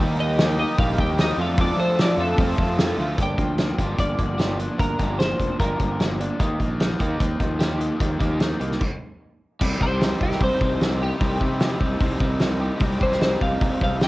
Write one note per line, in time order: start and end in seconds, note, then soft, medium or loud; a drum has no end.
0.00 0.63 D#2 loud
0.00 0.38 D#3 loud
0.00 0.38 G3 loud
0.00 0.39 A#3 loud
0.00 0.39 D#4 loud
0.00 1.41 G4 loud
0.00 0.38 G4 loud
0.20 0.58 D#5 loud
0.38 0.58 D#3 medium
0.38 0.59 G3 medium
0.38 0.59 A#3 loud
0.38 0.59 D#4 medium
0.38 0.58 G4 loud
0.38 snare loud
0.38 open hi-hat medium
0.59 0.77 D#3 medium
0.59 0.77 G3 medium
0.59 0.77 A#3 medium
0.59 0.78 D#4 loud
0.59 0.79 G4 medium
0.59 0.79 D#5 medium
0.78 0.94 A#1 medium
0.78 1.17 D#3 loud
0.78 1.17 G3 loud
0.78 1.17 A#3 loud
0.78 1.18 D#4 loud
0.78 1.18 G4 loud
0.78 0.99 F5 medium
0.78 kick loud
0.78 open hi-hat medium
0.98 1.31 D#2 loud
0.98 1.20 G5 loud
0.98 kick medium
1.18 1.37 D#3 medium
1.18 1.37 G3 medium
1.18 1.37 A#3 medium
1.18 1.37 D#4 loud
1.18 1.38 G4 loud
1.18 1.40 D#5 loud
1.18 snare loud
1.18 open hi-hat medium
1.37 1.70 F2 medium
1.37 1.57 F3 medium
1.37 1.57 A3 loud
1.37 1.58 D4 loud
1.37 1.58 F4 loud
1.37 2.39 A4 loud
1.41 1.60 F5 medium
1.58 1.98 F3 loud
1.58 1.98 A3 loud
1.58 1.99 D4 loud
1.58 1.99 F4 loud
1.58 1.78 D5 loud
1.58 kick loud
1.58 open hi-hat medium
1.77 2.10 F3 medium
1.77 1.97 C5 loud
1.99 2.18 F3 medium
1.99 2.19 A3 medium
1.99 2.19 D4 medium
1.99 2.20 F4 loud
1.99 2.20 D5 medium
1.99 snare loud
1.99 open hi-hat medium
2.17 2.34 F2 medium
2.17 2.37 F3 medium
2.17 2.37 A3 medium
2.17 2.38 D4 medium
2.17 2.38 F4 medium
2.17 2.95 A4 medium
2.38 2.54 F2 loud
2.38 2.77 F3 medium
2.38 2.77 A3 loud
2.38 2.78 C4 loud
2.38 2.98 F4 medium
2.38 2.79 F4 medium
2.38 kick loud
2.38 open hi-hat medium
2.58 2.90 F2 medium
2.58 kick medium
2.78 2.97 F3 medium
2.78 2.98 A3 medium
2.78 2.98 C4 medium
2.78 2.98 F4 medium
2.78 snare loud
2.78 open hi-hat medium
2.97 3.14 D2 medium
2.97 3.17 F3 medium
2.97 3.17 A3 medium
2.97 3.17 C4 medium
2.97 3.17 F4 loud
3.17 3.34 G1 medium
3.17 4.18 G2 medium
3.17 3.37 A#3 medium
3.17 3.37 D4 medium
3.17 3.37 G4 medium
3.17 kick loud
3.17 closed hi-hat medium
3.23 3.99 G5 loud
3.37 3.70 D2 medium
3.37 3.77 F3 medium
3.37 3.56 A#3 medium
3.37 3.56 D4 medium
3.37 kick medium
3.37 closed hi-hat medium
3.57 3.98 A#3 medium
3.57 3.77 D4 medium
3.57 snare loud
3.57 closed hi-hat medium
3.78 3.94 G1 medium
3.78 4.39 F3 medium
3.78 3.97 A#3 medium
3.78 3.98 D4 medium
3.78 3.98 G4 medium
3.78 kick medium
3.78 closed hi-hat medium
3.98 4.15 G1 medium
3.98 5.19 A#3 medium
3.98 4.17 D4 medium
3.98 4.79 D5 medium
3.98 kick loud
3.98 closed hi-hat medium
4.19 4.67 G1 medium
4.19 5.20 D3 medium
4.19 4.37 A#3 medium
4.19 4.37 D4 medium
4.19 kick medium
4.19 closed hi-hat medium
4.38 5.00 F3 medium
4.38 4.57 A#3 medium
4.38 4.58 D4 medium
4.38 4.58 G4 loud
4.38 snare medium
4.38 closed hi-hat medium
4.59 4.77 A#3 medium
4.59 5.60 D4 medium
4.59 closed hi-hat medium
4.78 4.95 G1 medium
4.78 5.79 G2 medium
4.78 4.97 A#3 medium
4.78 4.97 D4 medium
4.78 5.19 A#4 medium
4.78 kick loud
4.78 closed hi-hat medium
4.99 5.32 G1 loud
4.99 5.39 F3 medium
4.99 5.18 A#3 medium
4.99 5.18 D4 medium
4.99 5.18 G4 medium
4.99 kick medium
4.99 closed hi-hat medium
5.19 5.60 A#3 medium
5.19 5.37 D4 medium
5.19 5.59 C5 medium
5.19 snare loud
5.19 closed hi-hat medium
5.39 5.55 F1 medium
5.39 6.00 F3 medium
5.39 5.58 A#3 medium
5.39 5.58 D4 medium
5.39 kick medium
5.39 closed hi-hat medium
5.60 5.76 G1 medium
5.60 6.60 A#3 medium
5.60 5.79 D4 medium
5.60 5.79 G4 medium
5.60 6.16 A#4 medium
5.60 kick loud
5.60 closed hi-hat medium
5.80 6.28 G1 medium
5.80 6.39 D3 medium
5.80 5.98 A#3 medium
5.80 5.98 D4 medium
5.80 kick medium
5.80 closed hi-hat medium
6.00 6.43 F3 medium
6.00 6.18 A#3 medium
6.00 6.18 D4 medium
6.00 snare medium
6.00 closed hi-hat medium
6.20 6.38 A#3 medium
6.20 6.40 D4 medium
6.20 closed hi-hat medium
6.40 6.56 D#2 medium
6.40 7.40 D#3 medium
6.40 6.58 A#3 medium
6.40 6.59 D#4 medium
6.40 6.59 G4 medium
6.40 kick loud
6.40 closed hi-hat medium
6.59 6.92 A#1 loud
6.59 6.98 A#3 medium
6.59 6.78 D#4 medium
6.59 kick medium
6.59 closed hi-hat medium
6.80 6.98 A#3 medium
6.80 7.19 D#4 medium
6.80 snare loud
6.80 closed hi-hat medium
6.99 7.16 D#2 medium
6.99 7.60 A#3 medium
6.99 7.19 D#4 medium
6.99 7.19 G4 medium
6.99 kick medium
6.99 closed hi-hat medium
7.20 7.36 D#2 medium
7.20 7.38 A#3 medium
7.20 8.21 D#4 medium
7.20 kick medium
7.20 closed hi-hat medium
7.40 7.89 D#2 medium
7.40 8.41 F3 medium
7.40 7.58 A#3 medium
7.40 7.58 D#4 medium
7.40 kick medium
7.40 closed hi-hat medium
7.60 8.21 A#3 medium
7.60 7.79 D#4 medium
7.60 7.79 G4 loud
7.60 snare medium
7.60 closed hi-hat medium
7.80 7.98 A#3 medium
7.80 7.99 D#4 medium
7.80 8.81 G4 medium
7.80 closed hi-hat medium
8.00 8.16 D#2 medium
8.00 8.81 D#3 medium
8.00 8.18 A#3 medium
8.00 8.18 D#4 medium
8.00 kick loud
8.00 closed hi-hat medium
8.20 8.53 D#2 medium
8.20 8.60 A#3 medium
8.20 8.39 D#4 medium
8.20 8.39 G4 medium
8.20 kick medium
8.20 closed hi-hat medium
8.39 8.58 A#3 medium
8.39 8.81 D#4 medium
8.39 snare loud
8.39 closed hi-hat medium
8.60 8.77 C2 medium
8.60 8.81 A#3 medium
8.60 8.78 D#4 medium
8.60 closed hi-hat medium
8.72 snare soft
8.80 kick medium
8.80 crash medium
9.61 9.77 C2 medium
9.61 10.00 C3 loud
9.61 9.82 G3 loud
9.61 9.81 C4 loud
9.61 9.79 D#4 loud
9.61 kick loud
9.61 crash loud
9.80 10.13 C2 medium
9.80 10.01 G3 soft
9.80 10.01 C4 medium
9.80 10.02 D#4 medium
9.80 11.01 G4 medium
9.80 10.21 C5 medium
9.80 kick medium
10.00 10.39 C3 medium
10.00 10.22 G3 medium
10.00 10.21 C4 medium
10.00 10.20 D#4 loud
10.00 snare loud
10.00 open hi-hat medium
10.20 10.37 C2 medium
10.20 10.40 G3 medium
10.20 10.41 C4 medium
10.20 10.41 D#4 medium
10.20 10.41 G4 medium
10.20 kick medium
10.31 snare soft
10.40 10.49 C2 medium
10.40 10.79 C3 medium
10.40 10.61 G3 medium
10.40 10.60 C4 medium
10.40 10.59 D#4 medium
10.40 kick loud
10.40 open hi-hat medium
10.44 11.01 C5 medium
10.59 11.10 C2 medium
10.59 10.80 G3 medium
10.59 10.80 C4 medium
10.59 10.81 D#4 medium
10.59 kick medium
10.79 11.18 C3 medium
10.79 11.01 G3 medium
10.79 11.00 C4 medium
10.79 10.98 D#4 medium
10.79 snare medium
10.79 open hi-hat soft
10.99 11.18 G3 medium
10.99 11.19 C4 medium
10.99 11.20 D#4 medium
10.99 11.42 G4 medium
10.99 12.19 G4 medium
11.18 11.37 C2 medium
11.18 11.59 C3 loud
11.18 11.40 G3 loud
11.18 11.39 C4 loud
11.18 11.38 D#4 medium
11.18 kick loud
11.18 open hi-hat medium
11.23 12.01 G3 medium
11.38 11.73 C3 loud
11.38 11.60 G3 medium
11.38 11.60 C4 medium
11.38 11.61 D#4 medium
11.38 12.60 G4 medium
11.38 kick medium
11.59 11.99 C3 medium
11.59 11.80 G3 medium
11.59 11.80 C4 medium
11.59 11.79 D#4 medium
11.59 snare loud
11.59 open hi-hat soft
11.79 11.97 C2 medium
11.79 12.00 G3 medium
11.79 12.01 C4 medium
11.79 12.01 D#4 medium
11.79 kick medium
11.99 12.17 C2 loud
11.99 12.38 C3 medium
11.99 12.21 G3 medium
11.99 12.20 C4 medium
11.99 12.19 D#4 medium
11.99 kick loud
11.99 open hi-hat medium
12.19 12.69 C2 medium
12.19 12.38 G3 medium
12.19 12.39 C4 medium
12.19 12.40 D#4 medium
12.19 kick medium
12.38 12.80 C3 medium
12.38 12.61 G3 medium
12.38 12.60 C4 medium
12.38 12.59 D#4 medium
12.38 snare loud
12.38 open hi-hat soft
12.60 12.80 G3 medium
12.60 12.81 C4 medium
12.60 12.81 D#4 medium
12.60 13.00 G4 medium
12.80 12.97 C2 medium
12.80 13.19 C3 medium
12.80 13.02 G3 loud
12.80 13.02 C4 loud
12.80 13.00 D#4 loud
12.80 kick loud
12.80 open hi-hat medium
13.00 13.34 C2 loud
13.00 13.21 G3 medium
13.00 13.21 C4 medium
13.00 13.22 D#4 medium
13.00 14.08 G4 medium
13.00 13.22 C5 medium
13.00 kick medium
13.12 snare soft
13.20 13.60 C3 medium
13.20 13.43 G3 medium
13.20 13.41 C4 loud
13.20 13.41 D#4 loud
13.20 13.42 C5 medium
13.20 snare loud
13.20 open hi-hat medium
13.41 13.57 C2 medium
13.41 13.61 G3 medium
13.41 13.61 C4 medium
13.41 13.62 D#4 medium
13.41 13.81 F5 medium
13.41 kick medium
13.61 13.69 C2 medium
13.61 14.01 C3 medium
13.61 13.83 G3 medium
13.61 13.81 C4 medium
13.61 13.81 D#4 medium
13.61 kick loud
13.61 open hi-hat medium
13.81 14.08 C2 medium
13.81 14.03 G3 medium
13.81 14.03 C4 medium
13.81 14.04 D#4 medium
13.81 14.02 F5 medium
13.81 kick medium
14.01 14.08 C3 medium
14.01 14.08 G3 medium
14.01 14.08 C4 medium
14.01 14.08 D#4 loud
14.01 14.08 G5 medium
14.01 snare loud
14.01 open hi-hat medium